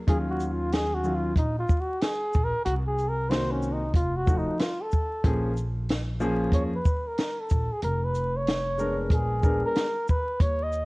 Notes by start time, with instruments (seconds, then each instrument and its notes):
0.07 upright bass D#2, grand piano D#3 F#3 C#4 F4, flugelhorn G#4, kick, closed hi-hat
0.30 flugelhorn F#4
0.40 closed hi-hat, shaker
0.48 flugelhorn F4 F#4
0.72 flugelhorn G#4, snare, closed hi-hat
0.94 flugelhorn F#4
1.04 grand piano D#3 F#3 C#4 F4, shaker
1.16 flugelhorn F4
1.36 upright bass A#1, flugelhorn D#4, kick, closed hi-hat
1.58 flugelhorn F4
1.69 kick, shaker
1.80 flugelhorn F#4
2.01 flugelhorn G#4, snare, closed hi-hat
2.33 upright bass A#1, kick, shaker
2.44 flugelhorn A#4
2.65 upright bass C2, flugelhorn F#4, closed hi-hat
2.87 flugelhorn G#4
2.98 closed hi-hat, shaker
3.09 flugelhorn A#4
3.30 grand piano D#3 A#3 C4 F#4, flugelhorn C5, snare, closed hi-hat
3.51 flugelhorn C#4
3.63 shaker
3.73 flugelhorn D#4
3.94 upright bass F1, flugelhorn F4, kick, closed hi-hat
4.16 flugelhorn F#4
4.26 grand piano F3 A3 D#4 F#4, kick, shaker
4.38 flugelhorn D#4
4.59 flugelhorn F4, snare, closed hi-hat
4.82 flugelhorn A4
4.92 kick, shaker
5.24 upright bass A#1, grand piano F3 A#3 C#4 G#4, kick, closed hi-hat
5.57 closed hi-hat, shaker
5.89 snare, closed hi-hat
6.20 grand piano F3 A#3 C#4 G#4, shaker
6.52 upright bass F2, flugelhorn C#5, kick, closed hi-hat
6.75 flugelhorn B4
6.85 kick, shaker
7.07 flugelhorn A#4
7.17 snare, closed hi-hat
7.40 flugelhorn A4
7.50 upright bass A#1, kick, closed hi-hat, shaker
7.72 flugelhorn G#4
7.82 upright bass F1, flugelhorn A#4, closed hi-hat
8.04 flugelhorn B4
8.15 closed hi-hat, shaker
8.37 flugelhorn C#5
8.47 snare, closed hi-hat
8.78 grand piano G#3 B3 D4 A#4, shaker
9.10 upright bass A#1, flugelhorn G#4, kick, closed hi-hat
9.42 grand piano G#3 B3 D4 A#4, kick, shaker
9.66 flugelhorn A#4
9.76 snare, closed hi-hat
10.08 flugelhorn B4, kick, shaker
10.40 upright bass D#2, flugelhorn C#5, kick, closed hi-hat
10.63 flugelhorn D#5
10.73 closed hi-hat, shaker